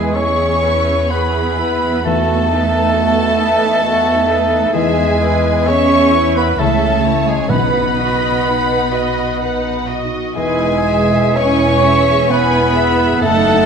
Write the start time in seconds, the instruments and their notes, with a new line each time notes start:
Already playing: timpani E2, double bass section E2, harp E3 B3 E4 B4, cello section G#3, bassoon G#3, viola section E4 G#4, oboe G#4, violin section B4 G#5, flute G#5
0.15 bassoon C#4, cello section C#4, viola section E4 G#4, violin section G#4 C#6, oboe C#5, harp E5, flute C#6
0.49 harp B5
0.64 viola section E4 G#4, violin section B4
0.81 harp E5
1.10 bassoon B3, cello section B3, viola section E4 G#4, violin section G#4 B5, oboe B4, harp B4, flute B5
1.44 harp E4
1.58 viola section E4 G#4, violin section B4
1.75 harp B3
2.04 harp E3, cello section A3, bassoon A3, viola section B3 F#4, french horn section D#4 B4, violin section A4 A5, oboe A4, flute A5
2.36 harp D#4
2.50 viola section D#4 A4, violin section B4
2.67 harp B4
2.95 viola section B3 F#4, violin section A4, harp D#5
3.26 harp B5
3.41 viola section D#4 A4, violin section B4
3.55 harp D#5
3.84 viola section B3 F#4, violin section A4, harp B4
4.15 harp D#4
4.29 viola section D#4 A4, violin section B4
4.44 harp B3
4.73 double bass section E2, harp E3, cello section G#3, bassoon G#3, viola section B3 G#4, french horn section E4 B4, oboe G#4, violin section E5 G#5, flute G#5
5.05 harp E4
5.19 viola section E4 B4, violin section B4
5.37 harp B4
5.67 viola section B3 G#4, cello section C#4, bassoon C#4, oboe C#5, violin section E5 C#6, harp E5, flute C#6
6.00 harp B5
6.14 viola section E4 B4, violin section B4
6.29 harp E5
6.36 cello section B3, bassoon B3, oboe B4, violin section B5, flute B5
6.58 double bass section C#2, harp C#3, cello section A3, bassoon A3, viola section C#4 G#4, french horn section E4 C#5, oboe A4, violin section E5 A5, flute A5
6.89 harp C#4
7.03 viola section E4, violin section C#5
7.20 harp E4 E5
7.26 cello section G#3, bassoon G#3, oboe G#4, flute G#5, violin section G#5
7.48 double bass section B1, timpani B2, harp B2, bassoon B3, cello section B3, french horn section D#4 B4, viola section D#4 B4, oboe B4, violin section F#5 B5, flute B5
7.81 harp D#4
7.98 viola section F#4 D#5, violin section D#5
8.13 harp B4
8.45 viola section D#4 B4, harp D#5, violin section F#5
8.77 harp F#5
8.93 viola section F#4 D#5, violin section D#5
9.09 harp D#5
9.40 viola section D#4 B4, harp B4, violin section F#5
9.72 harp F#4
9.88 viola section F#4 D#5, violin section D#5
10.04 harp D#4
10.36 double bass section E1, harp E2, cello section G#3, bassoon G#3, french horn section E4 B4, viola section E4 B4, oboe G#4, violin section G#5, flute G#5
10.69 harp E4
10.87 viola section G#4, violin section E5
11.03 harp B4
11.35 bassoon C#4, cello section C#4, viola section E4 B4, oboe C#5, harp E5, violin section G#5 C#6, flute C#6
11.68 harp G#5
11.83 viola section G#4, violin section E5
12.29 cello section B3, bassoon B3, viola section E4 B4, french horn section E4 B4, harp B4, oboe B4, violin section G#5 B5, flute B5
12.60 harp G#4
12.75 viola section G#4, violin section E5
12.91 harp E4
13.21 double bass section F#1, harp F#2, cello section A3, bassoon A3, viola section D#4 A4, french horn section D#4 A4, oboe A4, violin section F#5 A5, flute A5
13.54 harp D#4